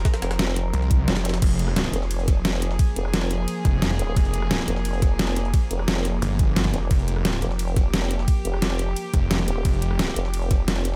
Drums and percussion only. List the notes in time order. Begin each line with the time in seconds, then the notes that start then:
0.05 kick, snare, closed hi-hat
0.14 snare, closed hi-hat
0.22 snare, closed hi-hat
0.31 cross-stick, snare, closed hi-hat
0.39 snare, closed hi-hat
0.48 cross-stick
0.56 closed hi-hat
0.73 closed hi-hat
0.82 closed hi-hat
0.91 kick, closed hi-hat
1.08 snare, closed hi-hat
1.16 snare, closed hi-hat
1.25 snare, closed hi-hat
1.29 snare, closed hi-hat
1.34 snare, closed hi-hat
1.42 kick, closed hi-hat, crash, ride
1.51 closed hi-hat
1.59 closed hi-hat
1.68 cross-stick
1.76 snare, closed hi-hat, ride
1.85 cross-stick, snare
1.93 closed hi-hat
2.02 snare
2.11 closed hi-hat, ride
2.19 closed hi-hat
2.28 kick, snare, closed hi-hat
2.45 snare, closed hi-hat, ride
2.53 cross-stick, closed hi-hat
2.62 closed hi-hat
2.71 snare
2.79 kick, closed hi-hat, ride
2.96 closed hi-hat
3.05 cross-stick
3.14 snare, closed hi-hat, ride
3.22 cross-stick
3.31 closed hi-hat
3.48 closed hi-hat, ride
3.65 kick, closed hi-hat
3.82 snare, closed hi-hat, ride
3.91 snare
3.99 closed hi-hat
4.16 kick, closed hi-hat, ride
4.25 closed hi-hat
4.34 closed hi-hat
4.42 cross-stick
4.51 snare, closed hi-hat, ride
4.59 cross-stick, snare
4.68 closed hi-hat
4.76 snare
4.85 closed hi-hat, ride
4.94 closed hi-hat
5.02 kick, snare, closed hi-hat
5.19 snare, closed hi-hat, ride
5.28 cross-stick, closed hi-hat
5.36 closed hi-hat
5.45 closed hi-hat
5.54 kick, snare, closed hi-hat, ride
5.71 closed hi-hat
5.79 cross-stick
5.88 snare, closed hi-hat, ride
5.96 cross-stick
6.05 closed hi-hat
6.22 closed hi-hat, ride
6.39 kick, closed hi-hat
6.56 snare, closed hi-hat, ride
6.65 snare
6.74 closed hi-hat
6.91 kick, closed hi-hat, ride
6.99 closed hi-hat
7.08 closed hi-hat
7.17 cross-stick
7.25 snare, closed hi-hat, ride
7.34 cross-stick, snare
7.42 closed hi-hat
7.51 snare
7.59 closed hi-hat, ride
7.68 closed hi-hat
7.76 kick, snare, closed hi-hat
7.94 snare, closed hi-hat, ride
8.02 cross-stick, closed hi-hat
8.11 closed hi-hat
8.19 snare
8.28 kick, closed hi-hat, ride
8.45 closed hi-hat
8.54 cross-stick
8.62 snare, closed hi-hat, ride
8.71 cross-stick
8.79 closed hi-hat
8.96 closed hi-hat, ride
9.14 kick, closed hi-hat
9.31 snare, closed hi-hat, ride
9.39 snare
9.48 closed hi-hat
9.65 kick, closed hi-hat, ride
9.74 closed hi-hat
9.82 closed hi-hat
9.91 cross-stick
9.99 snare, closed hi-hat, ride
10.08 cross-stick, snare
10.16 closed hi-hat
10.25 snare
10.34 closed hi-hat, ride
10.42 closed hi-hat
10.51 kick, snare, closed hi-hat
10.68 snare, closed hi-hat, ride
10.76 cross-stick, closed hi-hat
10.85 closed hi-hat